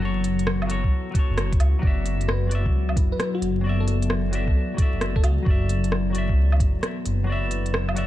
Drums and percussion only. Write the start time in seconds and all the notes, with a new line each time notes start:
0.24 closed hi-hat
0.39 closed hi-hat
0.47 cross-stick
0.62 low woodblock
0.70 closed hi-hat
0.84 kick
1.15 kick, closed hi-hat
1.38 cross-stick, closed hi-hat
1.52 kick, closed hi-hat
1.60 closed hi-hat, low woodblock
1.83 kick
2.06 closed hi-hat
2.21 closed hi-hat
2.29 cross-stick
2.51 closed hi-hat
2.66 kick
2.89 low woodblock
2.96 kick, closed hi-hat
3.20 cross-stick, closed hi-hat
3.42 closed hi-hat
3.88 closed hi-hat
4.02 closed hi-hat
4.10 cross-stick
4.33 closed hi-hat
4.48 kick
4.78 kick, closed hi-hat
5.01 cross-stick, closed hi-hat
5.16 kick
5.24 closed hi-hat, low woodblock
5.46 kick
5.69 closed hi-hat
5.84 closed hi-hat
5.92 cross-stick
6.15 closed hi-hat
6.29 kick
6.52 low woodblock
6.60 kick, closed hi-hat
6.83 cross-stick, closed hi-hat
7.05 closed hi-hat
7.51 closed hi-hat
7.66 closed hi-hat
7.74 cross-stick
7.89 low woodblock
7.97 closed hi-hat